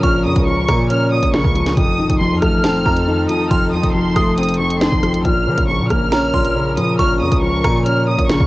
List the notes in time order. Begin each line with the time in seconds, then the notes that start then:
Already playing: A#2 C#3 F3 A#3 C#4 A#4
0.03 A#1 A#2 C#6 F6, kick, closed hi-hat
0.25 F2 C#3 D#6
0.36 C#2, kick, closed hi-hat
0.47 F3 C#6
0.68 A#2 A#3 A#5, kick, cross-stick, closed hi-hat
0.90 C#4 F6, closed hi-hat
1.12 A#2 D#6
1.23 A#1, kick, closed hi-hat
1.34 C#3 C#6, snare, closed hi-hat
1.44 C#2, kick
1.55 F3, closed hi-hat
1.66 snare, closed hi-hat
1.77 F1 F2 F3 D#4 A4 D#6, kick, closed hi-hat
1.99 D#1 D#3
2.10 F1, kick, closed hi-hat
2.20 F3 C6
2.31 F2
2.42 A1 A3 F6, kick, cross-stick, closed hi-hat
2.64 D#1 C4 A5, snare, closed hi-hat
2.86 F2 A#5, kick
2.97 closed hi-hat
3.08 D#3
3.29 F3 D#6, closed hi-hat
3.51 F1 F2 C6 F6, kick, closed hi-hat
3.73 F2 D#3 D#6
3.84 F1, kick, closed hi-hat
3.95 F3 C6
4.05 F#1
4.16 F1 A3 D#6, kick, cross-stick, closed hi-hat
4.38 C4 D#6, closed hi-hat
4.43 closed hi-hat
4.49 closed hi-hat
4.54 closed hi-hat
4.60 F2 C#6
4.71 closed hi-hat
4.81 D#3 C6, snare, closed hi-hat
4.92 F1, kick
5.03 F3, cross-stick, closed hi-hat
5.14 A1, closed hi-hat
5.25 A#1 A#2 F3 C#4 A#4 F6, kick, closed hi-hat
5.47 C#3 F3
5.57 A#1, kick, closed hi-hat
5.68 F3 C#6
5.79 A#2
5.90 A#1 A#3 F6, kick, cross-stick, closed hi-hat
6.12 C#4 A#5, snare, closed hi-hat
6.34 A#1 A#2 C6, kick
6.44 closed hi-hat
6.55 C#3
6.77 A#2 F3 D#6, closed hi-hat
6.99 A#1 A#2 C#6 F6, kick, closed hi-hat
7.21 F2 C#3 D#6
7.31 C#2, kick, closed hi-hat
7.42 F3 C#6
7.64 A#2 A#3 A#5, kick, cross-stick, closed hi-hat
7.86 C#4 F6, closed hi-hat
8.08 A#2 D#6
8.18 A#1, kick, closed hi-hat
8.29 C#3 C#6, snare, closed hi-hat
8.40 C#2, kick